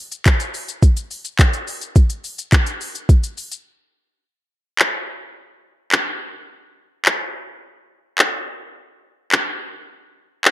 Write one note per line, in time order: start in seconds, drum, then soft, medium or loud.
0.12 closed hi-hat medium
0.12 shaker medium
0.26 kick loud
0.26 clap loud
0.26 closed hi-hat medium
0.26 shaker medium
0.40 closed hi-hat medium
0.40 shaker medium
0.54 open hi-hat medium
0.54 shaker medium
0.68 closed hi-hat medium
0.68 shaker medium
0.83 kick loud
0.83 closed hi-hat medium
0.83 shaker medium
0.97 closed hi-hat medium
0.97 shaker medium
1.11 open hi-hat medium
1.11 shaker medium
1.25 closed hi-hat soft
1.25 shaker medium
1.39 kick loud
1.39 clap loud
1.39 closed hi-hat medium
1.39 shaker medium
1.53 closed hi-hat medium
1.53 shaker medium
1.68 open hi-hat medium
1.68 shaker medium
1.81 closed hi-hat soft
1.81 shaker medium
1.96 kick loud
1.96 closed hi-hat medium
1.96 shaker medium
2.10 closed hi-hat medium
2.10 shaker medium
2.24 open hi-hat medium
2.24 shaker soft
2.39 closed hi-hat medium
2.39 shaker medium
2.52 kick loud
2.52 clap loud
2.52 closed hi-hat medium
2.52 shaker medium
2.66 closed hi-hat medium
2.66 shaker medium
2.81 open hi-hat medium
2.81 shaker medium
2.95 closed hi-hat medium
2.95 shaker medium
3.09 kick loud
3.09 closed hi-hat medium
3.09 shaker medium
3.24 closed hi-hat medium
3.24 shaker medium
3.38 open hi-hat medium
3.38 shaker medium
3.52 closed hi-hat soft
3.52 shaker medium
4.79 clap loud
5.92 clap loud
7.05 clap loud
8.18 clap loud
9.32 clap loud
10.45 clap loud